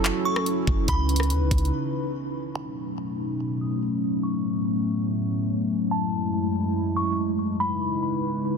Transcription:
Already playing: F#1 F#3 C#4 E4 F#4 A4 A5
0.04 clap, closed hi-hat
0.25 C#6
0.36 cross-stick
0.46 closed hi-hat
0.67 F#1, kick
0.88 C#2 C#3 D#4 B4 B5, kick, closed hi-hat
1.09 closed hi-hat
1.16 cross-stick, closed hi-hat
1.23 closed hi-hat
1.30 D#2, closed hi-hat
1.41 C#2
1.51 C#2, kick, closed hi-hat
1.58 closed hi-hat
1.65 closed hi-hat
2.55 B2 F#3 A3 C#4 D#4 B5
3.61 D#6
4.23 A2 B3 C#6
5.91 F#2 G#3 E4 A5
6.96 C#6
7.60 C#3 D#4 E4 B4 B5

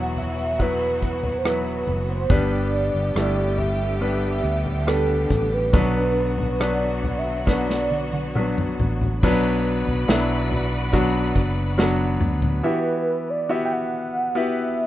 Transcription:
Already playing: E1 E3 F#3 B3 E4 F#4 B4 F#5
0.17 E5, floor tom
0.59 F#3 B3 E4 B4, kick
1.02 kick
1.23 floor tom
1.39 C5
1.45 F#3 B3 E4 B4, cross-stick
1.87 F#1, floor tom
2.09 C5
2.29 G1 G2 D3 G3 B3 D4 G4 B4 D5, kick, floor tom
2.94 G1
3.15 G1 G3 A3 D4 E4, cross-stick
3.23 B3
3.58 E5, floor tom
4.01 G3 B3 D4 B4
4.44 D2
4.66 floor tom
4.87 G3 B3 D4 A4 B4, cross-stick
5.30 A1, kick, floor tom
5.53 B4
5.73 B1 B2 F#3 B3 D4 F#4 B4, kick, floor tom
6.38 floor tom
6.60 F#3 B3 D4 B4 D5, cross-stick
7.04 floor tom
7.18 E5
7.46 F#3 B3 D4 B4 D5, kick, snare
7.70 snare
7.91 high tom
8.13 high tom
8.35 F#3 B3 D4 B4, mid tom
8.58 mid tom
8.79 A1, floor tom
9.01 floor tom
9.23 B1 B2 F#3 B3 D4 F#4 B4 D5 B5, kick, floor tom, crash
9.87 B1, floor tom
10.08 B1 F#3 B3 D4 E4, snare
10.51 floor tom
10.93 F#3 B3 D4 F#4, kick, floor tom
11.36 F#1, kick
11.78 F#3 B3 D4 F#4, snare
12.20 D2, mid tom
12.42 floor tom
12.63 E3 B3 E4 F#4 G4 B4 E5
13.30 D5
13.49 B3 E4 F#4 G4 E5
13.65 G5
13.73 F#5
14.35 B3 E4 F#4 G4 B4 E5

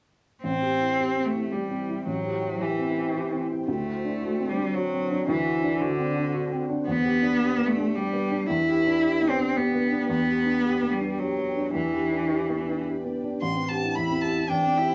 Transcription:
0.44 A1 C4 E4 C5 G5
0.62 G4
0.80 E4
0.99 G4
1.17 C4
1.25 A3
1.34 E4
1.52 G3 G4
1.71 C4
1.89 E4
2.06 A1 F#3
2.25 G4
2.42 E4
2.60 E3 G4
2.79 C4
2.97 E4
3.14 G4
3.33 C4
3.50 E4
3.68 D2 A3 D4 F#5
3.86 F#4
4.05 D4
4.22 F#4
4.40 C4
4.50 G3
4.57 D4
4.75 F#3 F#4
4.93 C4
5.11 D4
5.28 D2 E3
5.45 F#4
5.63 D4
5.81 D3 F#4
5.98 C4
6.17 D4
6.34 F#4
6.52 C4
6.69 D4
6.87 E2 B3 D4 B4 G5
7.05 G4
7.22 D4
7.40 G4
7.58 B3
7.67 A3
7.76 D4
7.95 G3 G4
8.13 B3
8.31 D4
8.49 E2 E4
8.68 G4
8.86 D4
9.03 G4
9.21 B3
9.30 C4
9.39 D4
9.56 B3 G4
9.75 B3
9.92 D4
10.09 E2 B3
10.28 G4
10.45 D4
10.65 G4
10.83 B3
10.92 G3
11.01 D4
11.19 F#3 G4
11.38 B3
11.57 D4
11.75 E2 E3 D4 B4 G5
11.93 G4
12.12 D4
12.31 G4
12.49 B3
12.68 D4
12.86 G4
13.05 B3
13.24 D4
13.42 A1 E4 G4 C5 C6
13.56 C4
13.68 G4 A5
13.83 E4
13.95 E2 E4 B5
14.10 C4
14.22 G4 A5
14.37 E4
14.49 E2 D4 G5
14.63 C4
14.77 E4 G4
14.91 E4

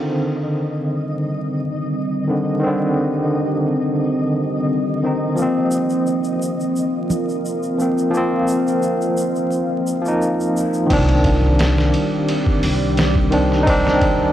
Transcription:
Already playing: D3 D#3 G3 C4 G4 D#5
2.27 D3 D#3 C4
2.60 D#3 C4
2.66 D3
5.03 D#3 C4 D#4
5.35 F3 A#3 F4 A#4 F5, shaker
5.42 C4
5.71 shaker
5.90 shaker
6.07 shaker
6.24 shaker
6.42 shaker
6.60 shaker
6.76 shaker
7.10 low conga, shaker
7.29 shaker
7.45 shaker
7.63 shaker
7.78 F3 A#3 C4, shaker
7.98 shaker
8.10 F3 A#3, shaker
8.17 C4
8.48 shaker
8.67 shaker
8.82 shaker
9.01 shaker
9.17 shaker
9.36 shaker
9.51 shaker
9.87 shaker
10.01 F3 A#3
10.05 D#4, shaker
10.22 shaker
10.40 shaker
10.57 shaker
10.74 shaker
10.86 D#3 C4, kick, crash, ride, impact
10.90 C2 G3 C4 D4 G4 D5
11.09 ride
11.24 kick, ride
11.59 snare, ride
11.78 snare
11.94 ride
12.29 ride
12.46 kick
12.63 C2, open hi-hat
12.97 snare, ride
13.15 kick
13.30 D#3 C4 D4, ride
13.52 snare
13.63 C4 D#4 D#6, kick
13.67 D4, ride
13.87 snare
14.01 kick, ride

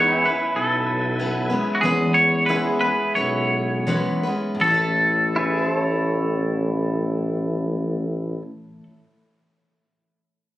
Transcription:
Already playing: E2 G#3 B3 C#4 D#4 E4 B4 C#5 F#5 G#5
0.10 E4 G5
0.21 B4 G#5
0.26 B3 C#4 B4
0.56 B1 A4
1.19 B3 C#4 B4
1.50 G#3 B3 C#4 B4
1.75 F#4
1.81 E2 E3 G#3 B3 C#4 G#4
1.86 B4
2.14 C#5
2.46 E2 E3 G#3 B3 C#4 E4 B4
2.50 G#4 B4
2.81 G#3 B3 C#4 B4
3.15 B1 G#3 B3 C#4 B4 C#5
3.87 E2 E3 G#3 B3 C#4 B4
4.23 G#3 B3 C#4 B4
4.55 A2
4.60 A1 E3 A3 A4
4.67 C#4 E4
4.74 A4
5.36 E4 G#4 B4
5.63 C5
5.70 A4
5.81 C#5

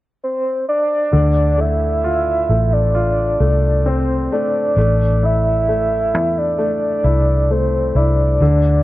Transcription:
0.23 C5
0.68 D5
1.13 D2 D3
1.58 A3 E5
2.04 F4
2.50 A1 A3
2.73 D5
2.95 F4
3.40 C2 A3
3.86 C4 C5
4.33 A3 D5
4.77 A1 A3
5.23 E4 E5
5.68 A3
6.14 E2 E4
6.38 D5
6.59 A3
7.04 C2 E4
7.51 A3 C5
7.95 C2 E4 D5
8.40 D2 D3

